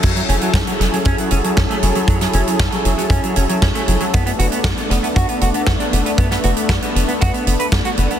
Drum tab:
CC |x---------------|----------------|----------------|----------------|
HH |xxxxxxxxxxxxxxxx|xxxxxxxxxxxxxxxx|xxxxxxxxxxxxxxxx|xxxxxxxxxxxxxxxx|
SD |----o-o-----o---|-o--o-------o---|----o-o-----o---|-o--o-------o---|
BD |o---o---o---o---|o---o---o---o---|o---o---o---o---|o---o---o---o---|